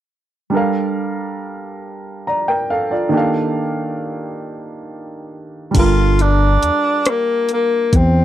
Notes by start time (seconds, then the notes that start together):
0.50 G3 D4 A4
0.55 A#4 F5
2.27 D5 A#5
2.48 A#4 G5
2.70 A4 F5
2.91 F4 D5
3.09 D#3 A#3 D4
3.14 G4 A4 F5
5.71 G3 D4, kick, closed hi-hat, crash
5.75 G1 F4 A4 A#4
6.19 D4, closed hi-hat
6.62 E2, closed hi-hat
7.05 A#3, cross-stick, closed hi-hat
7.49 closed hi-hat
7.53 A#3
7.93 E2 C4, kick, closed hi-hat